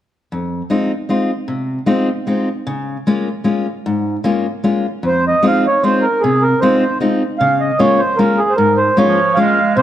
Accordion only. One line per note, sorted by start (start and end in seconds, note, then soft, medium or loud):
5.07 5.25 C5 medium
5.28 5.46 D#5 medium
5.47 5.67 F5 medium
5.67 5.83 C#5 medium
5.83 6.05 C5 medium
6.02 6.22 A#4 medium
6.21 6.43 G#4 medium
6.42 6.60 A#4 medium
6.61 6.98 C5 medium
7.38 7.61 F5 medium
7.60 7.80 D#5 medium
7.79 8.01 C#5 medium
7.99 8.19 C5 medium
8.17 8.39 A#4 medium
8.38 8.53 G#4 medium
8.49 8.56 C5 medium
8.56 8.79 A#4 medium
8.77 8.98 C5 medium
8.98 9.39 C#5 medium
9.35 9.73 F5 medium
9.77 9.82 C5 medium